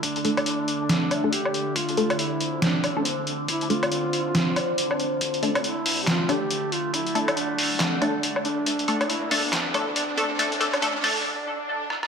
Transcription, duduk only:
X:1
M:4/4
L:1/16
Q:"Swing 16ths" 1/4=139
K:Dm
V:1 name="Duduk"
D12 G4 | F4 E4 D4- D3/2 z2 z/2 | E2 F12 z2 | z4 E3- E/2 G/2 F2 G4 F2 |
E4 D8 z2 D2- | D4 E2 D2 D8- | D12 z4 |]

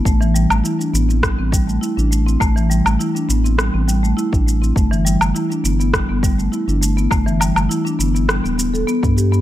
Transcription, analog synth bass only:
X:1
M:4/4
L:1/16
Q:1/4=102
K:Am
V:1 name="Analog synth bass" clef=bass
A,,,3 A,,, z2 A,,,3 A,,,3 z A,,,3 | A,,,3 A,,, z2 A,,,3 A,,,3 z A,,,3 | G,,,3 G,,, z2 G,,,3 G,,,3 z G,,,3 | G,,,3 G,,, z2 G,,,3 D,,,3 z G,,3 |]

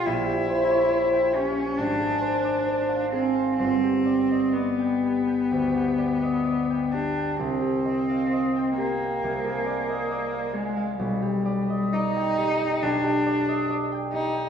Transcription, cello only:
X:1
M:4/4
L:1/8
Q:1/4=67
K:Gphr
V:1 name="Cello"
=E3 _D =D3 C | C2 =B,4- B, D | C3 B,4 A, | G,2 E2 D2 z E |]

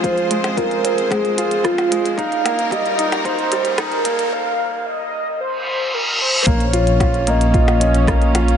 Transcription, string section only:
X:1
M:4/4
L:1/8
Q:1/4=112
K:Bbdor
V:1 name="String section"
[F,,F,CAc]8 | [G,,G,B,EB]8 | z8 | [F,B,D]8 |]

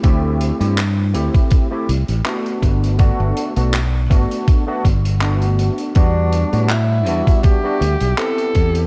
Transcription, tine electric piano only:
X:1
M:4/4
L:1/16
Q:"Swing 16ths" 1/4=81
K:G
V:1 name="Tine electric piano"
[A,CEG]3 [A,CEG] z2 [A,CEG]3 [A,CEG] z2 [A,B,DF]4 | [A,B,DF]3 [A,B,DF] z2 [A,B,DF]3 [A,B,DF] z2 [A,B,DF]4 | [G,B,DF]3 [G,B,DF] z2 [G,B,DF]3 [G,B,DF] z2 [B,CEG]4 |]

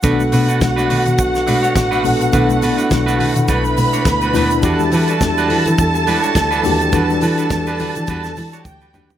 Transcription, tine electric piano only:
X:1
M:4/4
L:1/8
Q:"Swing 16ths" 1/4=104
K:Bm
V:1 name="Tine electric piano"
[B,,B,DA]2 z4 z [B,,B,DA] | [B,,B,DA]2 z4 z [B,,B,DE] | [E,DFG]2 z4 z [E,DFG] | [E,DFA]2 z4 z [E,DFG] |]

